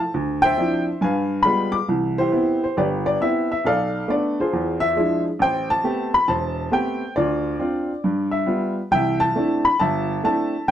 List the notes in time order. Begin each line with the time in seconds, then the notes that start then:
Already playing: A5
0.14 D2
0.42 C5 E5 G5
0.58 F3 C4 D4 E4
1.01 G2 B4 F5 G#5
1.43 G3 G#3 B3 F4 B5
1.72 D6
1.88 C2 E3
2.18 E4 G4 C5
2.32 B3 C4 E4
2.64 C5
2.77 G1 G4 B4 D5
3.06 D5
3.20 B3 C4 E4 E5
3.52 E5
3.65 B1 A4 D5 F5
4.08 A3 B3 D4 D5
4.40 F4 G#4 C5
4.53 E2
4.80 E5
4.96 F3 G#3 D4 E4
5.39 A1 C5 G5
5.70 A5
5.84 A3 B3 C4 G4
6.14 B5
6.28 E1 C5 A5
6.71 A3 B3 C4 G4 G5
7.16 D2 F4 D5
7.59 C4 D4 F4
8.04 G2
8.31 E5
8.46 G3 B3 F4
8.91 C2 E3 E5 G5
9.20 A5
9.35 A3 C4 D4 E4
9.65 B5
9.80 G1 E5 A5
10.24 A3 C4 D4 E4 A5
10.68 G2